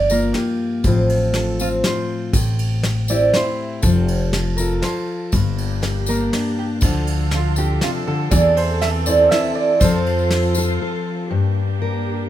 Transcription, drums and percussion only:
0.10 tambourine
0.34 snare, ride
0.84 kick, ride, tambourine
1.09 ride
1.34 snare, ride, tambourine
1.60 tambourine
1.84 snare, ride
2.33 kick, ride, tambourine
2.59 ride
2.83 snare, ride, tambourine
3.08 tambourine
3.34 snare, ride
3.82 kick, ride, tambourine
4.08 ride
4.33 snare, ride
4.58 tambourine
4.82 snare, ride, tambourine
5.32 kick, ride, tambourine
5.58 ride
5.82 snare, ride, tambourine
6.06 tambourine
6.33 snare, ride
6.81 kick, ride, tambourine
7.07 ride
7.31 snare, ride, tambourine
7.56 tambourine
7.81 snare, ride
8.31 kick, ride, tambourine
8.57 ride
8.81 snare, ride, tambourine
9.06 tambourine
9.32 snare, ride
9.81 kick, ride, tambourine
10.06 ride
10.19 tambourine
10.30 snare, ride, tambourine
10.43 tambourine
10.55 tambourine

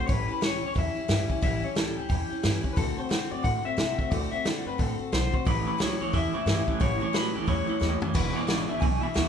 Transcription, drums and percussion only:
0.09 kick, open hi-hat
0.42 snare, open hi-hat
0.76 kick, open hi-hat
1.09 snare, open hi-hat
1.30 kick
1.42 kick, open hi-hat
1.76 snare, open hi-hat
2.10 kick, open hi-hat
2.44 snare, open hi-hat
2.64 kick
2.77 kick, open hi-hat
3.11 snare, open hi-hat
3.44 kick, open hi-hat
3.78 snare, open hi-hat
3.99 kick
4.12 kick, open hi-hat
4.46 snare, open hi-hat
4.79 kick, open hi-hat
5.13 snare, open hi-hat
5.34 kick
5.47 kick, open hi-hat
5.80 snare, open hi-hat
6.14 kick, open hi-hat
6.47 snare, open hi-hat
6.68 kick
6.81 kick, open hi-hat
7.14 snare, open hi-hat
7.48 kick, open hi-hat
7.81 snare
8.02 floor tom
8.15 kick, open hi-hat, crash
8.48 snare, open hi-hat
8.82 kick, open hi-hat
9.16 snare, open hi-hat

